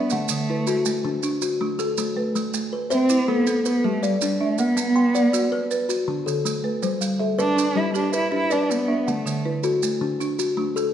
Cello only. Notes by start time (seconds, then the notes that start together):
Already playing: B3
0.12 A3
2.91 C4
3.28 B3
3.65 B3
3.85 A3
4.04 G3
4.21 G3
4.42 A3
4.61 B3
7.39 D4
7.76 E4
7.96 D4
8.15 E4
8.34 E4
8.52 D4
8.71 B3
9.09 A3